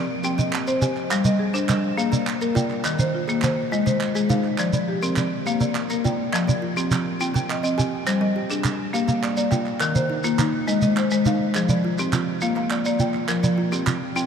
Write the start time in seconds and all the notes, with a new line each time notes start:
Already playing: F3 A#4 D5
0.24 C4 G4 G5, shekere
0.38 C4 D#5, shekere
0.53 clap
0.67 C4 C5, shekere
0.82 G4 D#5 G#5, clap, shekere
0.97 clap
1.11 G3 F5, clap, shekere
1.25 G3 D#5, shekere
1.39 G#4
1.54 D4 C5, clap, shekere
1.68 G3 D#5, clap, shekere
1.97 A#3 G#4 F5, shekere
2.12 A#3 D5, shekere
2.27 clap
2.41 A#3 A#4, shekere
2.55 F4 D5 G5, clap, shekere
2.70 clap
2.85 D#3 D#5, clap, shekere
2.99 D#3 C5, shekere
3.15 F4
3.28 A#3 G#4, clap, shekere
3.42 D#3 C5, clap, shekere
3.72 G#3 F4 D#5, shekere
3.86 G#3 C5, shekere
4.01 clap
4.15 G#3 G#4, shekere
4.30 D#4 C5 F5, clap, shekere
4.44 clap
4.58 F3 D5, clap, shekere
4.73 F3 D5, shekere
4.88 G4
5.02 C4 A#4, shekere
5.16 F3 D5, clap, shekere
5.46 A#3 G4 F5, shekere
5.60 A#3 D5, shekere
5.75 clap
5.90 A#3 A#4, shekere
6.05 F4 D5 G5, shekere
6.33 F3 D#5, clap, shekere
6.47 F3 D5, shekere
6.62 F4
6.77 C4 G4, clap, shekere
6.91 F3, clap, shekere
7.20 C4 F4 G5, shekere
7.34 C4 G5, shekere
7.50 D#5, clap
7.63 C4 D#5, shekere
7.78 G4 G#5, clap, shekere
8.07 G3 C5, clap, shekere
8.21 G3 D#5
8.36 G4
8.50 D4 G#4, clap, shekere
8.64 G3, clap, shekere
8.93 A#3 G4 F5, shekere
9.08 A#3 F5, shekere
9.23 D5, clap
9.37 A#3 D5, shekere
9.51 F4 G5, clap, shekere
9.66 clap
9.80 D#3 A#4, clap, shekere
9.95 D#3 C5, shekere
10.10 D#4
10.24 A#3 F4, clap, shekere
10.38 D#3 D#4, clap, shekere
10.68 G#3 D#4 D#5, shekere
10.82 G#3 D#5, shekere
10.97 C5, clap
11.11 G#3 C5, shekere
11.26 D#4 F5, clap, shekere
11.55 F3 G#4, clap, shekere
11.69 F3 D5, shekere
11.85 F4
11.99 C4 G4, clap, shekere
12.13 F3 F4, clap, shekere
12.41 A#3 F4 F5, shekere
12.56 A#3 F5, clap
12.70 D5, clap
12.85 A#3 D5, shekere
13.00 F4 G5, shekere
13.14 clap
13.28 F3 A#4, clap, shekere
13.43 F3 D5, shekere
13.58 F4
13.72 C4 G4, clap, shekere
13.86 F3 F4, clap, shekere
14.16 C4 F4 G5, shekere